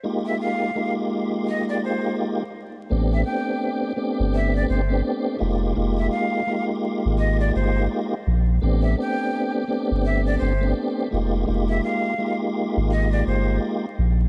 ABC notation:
X:1
M:4/4
L:1/16
Q:"Swing 16ths" 1/4=84
K:Flyd
V:1 name="Flute"
z e f3 z3 _e d c2 z4 | z e g3 z3 e d c2 z4 | z e f3 z3 _e d c2 z4 | z e g3 z3 e d c2 z4 |
z e f3 z3 _e d c2 z4 |]
V:2 name="Tonewheel organ"
[_A,_B,_EFG]4 [A,B,EFG]8- [A,B,EFG] z3 | [A,B,CDG]2 [A,B,CDG]4 [A,B,CDG]4- [A,B,CDG] [A,B,CDG]3 [_A,_B,_EFG]2 | [_A,_B,_EFG]4 [A,B,EFG]8- [A,B,EFG] z3 | [A,B,CDG]2 [A,B,CDG]4 [A,B,CDG]4- [A,B,CDG] [A,B,CDG]3 [_A,_B,_EFG]2 |
[_A,_B,_EFG]4 [A,B,EFG]8- [A,B,EFG] z3 |]
V:3 name="Sub bass" clef=bass
z16 | A,,,2 z4 z G,,,3 G,,,2 z2 F,,,2 | F,,,2 z4 z _A,,,3 G,,,2 z2 _B,,,2 | A,,,2 z4 z G,,,3 G,,,2 z2 F,,,2 |
F,,,2 z4 z _A,,,3 G,,,2 z2 _B,,,2 |]